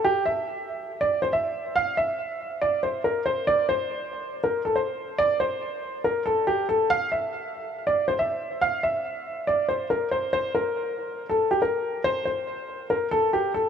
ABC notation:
X:1
M:4/4
L:1/16
Q:1/4=140
K:Cmix
V:1 name="Upright piano"
G2 e6- e d2 c e4 | f2 e6 d2 c2 B2 c2 | d2 c6- c B2 A c4 | d2 c6 B2 A2 G2 A2 |
f2 e6- e d2 c e4 | f2 e6 d2 c2 B2 c2 | c2 B6- B A2 G B4 | c2 c6 B2 A2 G2 A2 |]